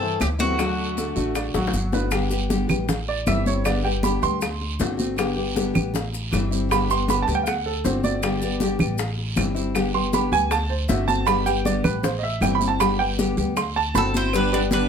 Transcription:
Already playing: G2 C4 A4
0.02 E3 E4, high bongo, high conga
0.20 D2 C4 G4, high bongo, low bongo, high conga, short guiro, claves, maracas
0.39 E3 G3 A3 C4 E4 F#4 F#5, high bongo, high conga, short guiro, maracas
0.58 D3 F#3 A3 D4 F#4, high bongo, high conga, long guiro, claves, maracas
0.78 high bongo, high conga
0.97 D3 A3 D4 F#4 A4, high bongo, high conga, short guiro, maracas
1.16 A1 A3 D4 F#4, high conga, short guiro, maracas
1.35 D4 D5, muted nylon-string guitar stroke, high bongo, high conga, long guiro, claves, maracas
1.54 A1 F#3 F#4, high bongo, high conga, maracas
1.67 low bongo
1.73 G1, high conga, short guiro, maracas
1.92 A3 B3 D4 F#4 B4, low bongo, high conga, short guiro, maracas
2.11 D3 G3 B3 G4, high bongo, high conga, long guiro, claves, maracas
2.30 G3 B3 G4, high bongo, high conga, maracas
2.50 D3 G3 B3 G4, high bongo, high conga, short guiro, maracas
2.68 A1 G3 B3 G4, high bongo, low conga, short guiro, claves, maracas
2.88 muted nylon-string guitar stroke, high bongo, high conga, low conga, long guiro, maracas
3.08 D5, high bongo, high conga
3.26 G1 E3 G3 C4 E4 E5, high bongo, low bongo, high conga, short guiro, claves, maracas
3.46 G3 C4 E4 C#5, high conga, short guiro, maracas
3.64 D3 G3 B3 G4 D5, high bongo, high conga, long guiro, claves, maracas
3.83 G3 B3 G4 G5, high bongo, high conga
4.02 D3 G3 B3 G4 B5, high bongo, high conga, short guiro, maracas
4.22 D2 G3 B3 G4 C6, high bongo, high conga, short guiro, maracas
4.40 muted nylon-string guitar stroke, high bongo, high conga, long guiro, claves, maracas
4.61 high bongo, high conga
4.79 G1 D3 A3 C4 F#4, high bongo, low bongo, high conga, short guiro, maracas
4.97 A3 C4 F#4, high conga, short guiro, maracas
5.16 D3 G3 B3 G4, high bongo, high conga, long guiro, claves, maracas
5.35 G3 B3 G4, high bongo, high conga
5.55 D3 G3 B3 G4, high bongo, high conga, short guiro, maracas
5.74 A1 G3 B3 G4, high bongo, low conga, short guiro, claves, maracas
5.94 muted nylon-string guitar stroke, high bongo, high conga, low conga, long guiro, maracas
6.13 high bongo, high conga, maracas
6.31 G1 E3 G3 C4 E4, high bongo, low bongo, high conga, short guiro, claves, maracas
6.51 G3 C4 E4, short guiro, maracas
6.69 D3 G3 B3 G4 B5, high bongo, high conga, long guiro, claves, maracas
6.89 G3 B3 G4 C6, high conga, maracas
7.08 D3 G3 B3 G4 B5, high bongo, high conga, short guiro, maracas
7.22 A5
7.27 D2 G3 B3 G4, high bongo, high conga, short guiro, maracas
7.35 G5
7.43 F5, muted nylon-string guitar stroke, high conga, claves, maracas
7.47 F#5, high bongo, long guiro
7.66 A4, high bongo, high conga
7.84 G1 D3 A3 C4 F#4 C5, high bongo, low bongo, high conga, short guiro, maracas
8.04 A3 C4 F#4 D5, high conga, short guiro, maracas
8.22 D3 G3 B3 G4, high bongo, high conga, long guiro, claves, maracas
8.41 G3 B3 G4, high bongo, high conga, maracas
8.60 D3 G3 B3 G4, high bongo, high conga, short guiro, maracas
8.79 A1 G3 B3 G4, high bongo, low conga, short guiro, claves, maracas
8.98 muted nylon-string guitar stroke, high bongo, high conga, long guiro, maracas
9.18 high bongo, high conga
9.36 G1 E3 G3 C4 E4, high bongo, low bongo, high conga, short guiro, claves, maracas
9.55 G3 C4 E4, short guiro, maracas
9.74 D3 G3 B3 G4, high bongo, high conga, long guiro, claves, maracas
9.93 G3 B3 G4 C6, high bongo, high conga
10.12 D3 G3 B3 G4 B5, high bongo, high conga, short guiro, maracas
10.32 D2 G3 B3 G4 G#5, high bongo, high conga, short guiro, maracas
10.50 A5, muted nylon-string guitar stroke, high bongo, high conga, long guiro, claves, maracas
10.70 C5, high bongo, high conga
10.88 G1 D3 A3 C4 F#4 E5, high bongo, low bongo, high conga, short guiro, maracas
11.07 A3 C4 F#4 A5, high conga, short guiro, maracas
11.25 D3 G3 B3 G4 B5, high bongo, high conga, long guiro, claves, maracas
11.46 G3 B3 G4 G5, high bongo, high conga, maracas
11.65 D3 G3 B3 G4 D5, high bongo, high conga, short guiro, maracas
11.84 A1 G3 B3 G4 B4, high bongo, low conga, short guiro, claves, maracas
12.03 C5, muted nylon-string guitar stroke, high bongo, high conga, low conga, long guiro, maracas
12.19 D#5
12.23 E5, high bongo, high conga
12.40 G1 E3 G3 C4 E4 G5, high bongo, low bongo, high conga, short guiro, claves, maracas
12.55 B5
12.60 G3 C4 E4, high conga, short guiro, maracas
12.68 A5
12.79 D3 G3 B3 G4 B5, high bongo, high conga, long guiro, claves, maracas
12.98 G3 B3 G4 G5, high bongo, high conga
13.18 D3 G3 B3 G4, high bongo, high conga, short guiro, maracas
13.37 D2 G3 B3 G4, high bongo, high conga, short guiro, maracas
13.56 C6, muted nylon-string guitar stroke, high bongo, high conga, long guiro, claves, maracas
13.76 A5, high bongo, high conga
13.94 G1 D3 A3 C4 F#4 A4 B5, high bongo, low bongo, high conga, short guiro, maracas
14.14 A3 C4 E4 F#4 C5, high conga, short guiro, maracas
14.33 D3 G3 B3 D4 G4 B4, cowbell, high conga, long guiro, claves, maracas
14.52 G3 B3 D4 G4 B4 D5, high conga
14.70 D3 G3 B3 G4 B4, cowbell, high conga, short guiro, maracas
14.75 D4

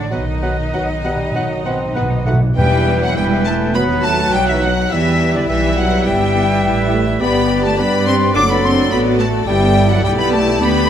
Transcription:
Already playing: D5
0.11 B1 B2 D#3 F#3 B3 D#4 F#4 B4 D#5 F#5
0.20 B2
0.28 B2
0.36 B2
0.42 B2 F#3 B3 F#4 B4 F#5
0.52 B2
0.60 B2
0.73 B1 B2 F#3 B3 F#4 B4 F#5
0.84 B2
0.92 B2
1.00 B2 B4
1.04 B2 G3 B3 F#4 F#5
1.16 B2
1.24 B2
1.31 B1 B2 F#3 B4 F#5
1.36 B2 B3 F#4 F#5
1.47 B2
1.54 B2
1.62 B2 B3 C4 F#4 B4 F#5
1.70 B2
1.78 B2
1.86 B2
1.93 B1 B2 B3 F#4 B4 F#5
2.02 B2
2.10 B2
2.17 B2
2.25 B2 A3 B3 F#4 B4 F#5
2.33 B2
2.41 B2
2.49 B2
2.57 E2 E3 G3 B3 E4 G4 B4 G5
3.02 F#3 F#5
3.17 E1 E3 G3 B3 B4 G5
3.46 A3 A5
3.75 D#2 F#3 B3 F#4 B4 F#5 B5
4.04 A3 A5
4.33 B1 G3 D#4 G5
4.48 E3 E5
4.62 F#3 F#5
4.91 E2 E3 G3 E4 G4 B4 E5
5.35 D3 D5
5.48 B1 E3 G3 G4 B4 E5
5.76 F#3 F#5
6.06 G1 G3 B3 B4 E5 G5
6.35 B3
6.64 A1 G3 E4
6.93 A3
7.21 G1 G3 B3 G4 B4 D5 B5
7.63 A3 A5
7.77 G2 G3 B3 B4 D5 B5
8.06 C4 C6
8.35 F#1 F#3 A3 D4 A4 D5 D6
8.50 B3 B5
8.64 C4 C6
8.91 A1 B3 F#4 D5 B5
9.19 A3 A5
9.47 G1 G3 B3 E4 G4 D5 E5 G5
9.90 F#3 F#5
10.04 B1 G3 B3 G4 D5 G5
10.18 B3 B5
10.32 A3 A5
10.61 D2 G3 A3 B3 D4 G4 D5 B5

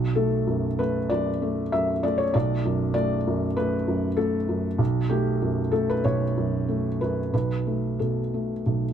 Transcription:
Already playing: B1
0.15 A3 A4
0.47 F#2
0.79 A3 B4
1.10 F#2 D5
1.42 A3
1.72 F#2 E5
2.03 A3 D5
2.18 C#5
2.34 B1 D5
2.65 F#2
2.94 A3 D5
3.27 F#2
3.57 A3 B4
3.88 F#2
4.17 A3 A4
4.49 F#2
4.79 B1
5.10 A3 G4
5.42 F#2
5.72 A3 A4
5.90 B4
6.05 B1 C#5
6.37 F#2
6.68 A3
7.01 F#2 B4
7.34 B1 B4
7.67 A3
7.99 B2 A4
8.34 A3
8.66 B1

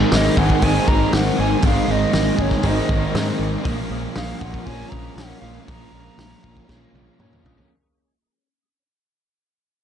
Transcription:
Already playing: G#2 D#3 G#3 A#3 C4 D#4 G#4 A#4 D#5 G#5 C6
0.11 G#1 D#3 G#3 A#3 C4 D#4 D#5, snare, open hi-hat
0.34 G#1 G#3 C4 D#4 G#4 F#5, kick
0.50 kick
0.62 G#1 G#2 D#3 G#3 C4 G#5, kick, open hi-hat
0.66 D#4
0.86 G#1 G#3 A#3 C4 D#4 A#5, kick
1.11 G#1 D#3 G#3 C4 D#4 F#5, snare, open hi-hat
1.37 G#1 G#3 A#3 C4 D#4 G#5
1.61 G#1 G#2 D#3 G#3 C4, kick, open hi-hat
1.65 D#4 F5
1.86 G#1 D#3 G#3 C4 D#4
1.91 D#5
2.11 G#1 D#3 G#3 A#3 C4, snare, open hi-hat
2.16 D#4
2.36 G#1 D#4 G#4, kick
2.40 G#3 C4 C#5
2.51 kick, snare
2.63 G#1 G#2 D#3 G#3 C4, kick, open hi-hat
2.67 D#4 D#5
2.88 G#1 A#3 C4 D#4, kick
2.92 G#3
3.12 G#2 D#3 C4, snare, open hi-hat
3.16 G#3 C4 D#4
3.38 G#1 A#3 C4 D#4
3.44 G#3
3.64 A#1 A#2 F3 G#3 A#3 C#4 F4 F5 G#5 C#6, kick, open hi-hat
3.90 A#1 G#3 A#3 C#4 F4
4.15 A#1 F3 G#3 A#3 C#4 F4 F5, snare, open hi-hat
4.39 A#1 C#4 F4 F#5, kick
4.44 A#3
4.54 kick
4.65 A#1 A#2 F3 A#3 C#4 F4 G#5, kick, open hi-hat
4.89 A#1 G#3 F4 A#5, kick
4.94 A#3 C#4
5.15 A#1 F3 A#3 C#4 F#5, snare, open hi-hat
5.21 C#4 F4
5.40 A#1 G#3 F4 F5
5.45 A#3 C#4
5.67 A#1 A#2 F3 G#3 A#5, kick, open hi-hat
5.71 A#3 C#4 F4
5.92 A#1 G#3 F4
5.97 A#3 C#4
6.17 A#1 F3 G#3 A#3, snare, open hi-hat
6.21 C#4 F4
6.42 A#1 C#4 F4, kick
6.47 A#3
6.57 kick
6.68 A#1 A#2 F3 A#3 C#4, kick, snare
6.72 F4
6.92 A#1 G#3 C#4 F4, high tom
6.97 A#3
7.19 A#2 F3 A#3 C#4, mid tom
7.24 F4
7.33 mid tom
7.43 A#1 G#3 F4, floor tom
7.47 A#3 C#4
7.58 floor tom

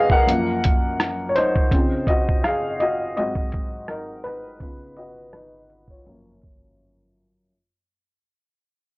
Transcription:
Already playing: C#3 F3 B3 D#4 F#4 G#4 B4 D#5 F5
0.10 A#4 F#5, kick
0.27 F#2 F3 A#3, closed hi-hat
0.64 kick, closed hi-hat
1.00 cross-stick, closed hi-hat
1.29 C#5
1.35 D#4 C5, cross-stick, closed hi-hat
1.56 kick
1.71 C#3 C4 F4, kick, closed hi-hat
2.07 F#4 D#5, kick, closed hi-hat
2.29 kick
2.44 G#4 F5, cross-stick, closed hi-hat
2.80 F#4 D#5, closed hi-hat
3.17 G#2 F#3 C4 F#4 D#5, closed hi-hat
3.35 kick
3.52 kick, closed hi-hat
3.88 D#4 A#4, cross-stick, closed hi-hat
4.24 D#4 B4, cross-stick, closed hi-hat
4.60 C#3 B3 F4, kick, closed hi-hat
4.97 F#4 D#5, closed hi-hat
5.33 D#4 B4, cross-stick, closed hi-hat
5.70 closed hi-hat
5.88 C#5, kick
5.93 F4
6.06 F#2 F3 A#3, closed hi-hat
6.42 kick, closed hi-hat

